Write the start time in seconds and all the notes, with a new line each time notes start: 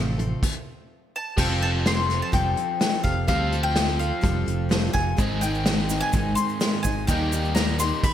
Already playing: A1 F2 C3 F3 A3 C4 F4 A4
0.18 F2 C3 C4 F4 A4, closed hi-hat
0.43 kick, crash
1.16 A5
1.36 F1 F3 G3 C4 F4 G4 A4 F5 G5, kick, crash
1.60 C4 F4 A4 A5, closed hi-hat
1.85 G3 C4 F4 A4 C6, snare, closed hi-hat
2.08 C4 F4 A4, snare, closed hi-hat
2.22 A5
2.32 F1 F3 G3 C4 F4 A4 G5, kick, closed hi-hat
2.55 C4 F4 A4, closed hi-hat
2.80 G3 C4 F4 A4, snare, closed hi-hat
3.03 F1 C4 F4 G4 A4 F5, kick, closed hi-hat
3.26 D2 F3 G3 C4 F4 G4 A4 F5, kick, closed hi-hat
3.51 C4 F4 A4, closed hi-hat
3.63 G5
3.74 G3 C4 F4 A4, snare, closed hi-hat
3.88 snare
3.98 C4 F4 A4 F5, closed hi-hat
4.21 F1 F3 G3 C4 F4 A4, kick, closed hi-hat
4.46 F1 C4 F4 A4, closed hi-hat
4.69 G3 C4 F4 A4, snare, closed hi-hat
4.93 F1 C4 F4 G4 A4 F5 G#5, kick, closed hi-hat
5.17 G#1 G#2 D#3 G#3 C4 D#4 G#4 C5 D#5, kick, closed hi-hat, shaker
5.41 G#3 C4 D#4 G#4 G5, closed hi-hat, shaker
5.54 shaker
5.64 G#3 C4 D#4 G#4, snare, closed hi-hat, shaker
5.89 G#3 C4 D#4 G#4, snare, closed hi-hat, shaker
6.01 G#5
6.13 G#1 G#2 D#3 G#3 C4 D#4 G#4, kick, closed hi-hat, shaker
6.35 G#3 C4 D#4 G#4 C6, closed hi-hat, shaker
6.49 shaker
6.60 G#3 C4 D#4 G#4, snare, closed hi-hat, shaker
6.83 G#1 G#3 C4 D#4 G#4 C5 D#5 G#5, kick, closed hi-hat, shaker
7.07 D#2 D#3 G3 A#3 D#4 G4 A#4 D#5 G5, kick, closed hi-hat, shaker
7.31 A#3 D#4 G4, closed hi-hat, shaker
7.45 shaker
7.55 G3 A#3 D#4 G4 A#5, snare, closed hi-hat, shaker
7.79 A#3 D#4 G4 C6, snare, closed hi-hat, shaker
8.03 B5, kick, crash